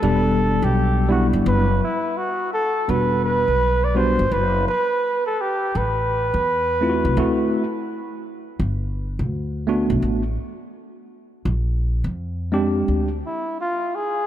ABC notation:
X:1
M:4/4
L:1/16
Q:"Swing 16ths" 1/4=84
K:Em
V:1 name="Flugelhorn"
A3 G3 F2 B2 E2 F2 A2 | B2 B3 d c2 B2 B3 A G2 | B12 z4 | z16 |
z8 z2 E2 ^E2 ^G2 |]
V:2 name="Tine electric piano"
[G,B,DA]6 [G,B,DE]2 z8 | [G,B,DF]2 z4 [G,B,DF]2 z8 | z6 [A,CE=F^F]2 [A,CEF]2 z6 | z6 [A,B,DF]2 z8 |
z6 [^G,^B,D=G]2 z8 |]
V:3 name="Upright bass" clef=bass
E,,,3 B,,,4 G,,, F,,,2 z6 | E,,,3 B,,,4 G,,, F,,,2 z6 | A,,,3 E,,4 C,, D,,2 z6 | G,,,3 D,,4 B,,, A,,,2 z6 |
^A,,,3 ^E,,4- E,, D,,2 z6 |]